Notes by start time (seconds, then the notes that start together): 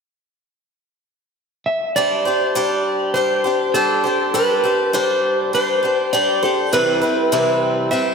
1.66 E5
1.96 G3 D4 G4 C5 D5
2.25 D4 G4 C5
2.55 G3 D4 G4 C5
3.14 G3 D4 G4 C5
3.44 D4 G4 C5
3.74 G3 D4 G4 A4 C5
4.04 D4 G4 C5
4.34 G3 D4 G4 B4 C5
4.64 D4 G4 C5
4.93 G3 D4 G4 C5
5.53 G3 D4 G4 C5
5.83 D4 G4 C5
6.13 G3 D4 G4 C5 D5
6.43 D4 G4 A4 C5
6.73 C3 E3 G3 C4 E4 B4
7.02 G3 C4 E4 B4
7.32 C3 E3 G3 C4 E4 B4
7.91 G3 C4 E4 B4 E5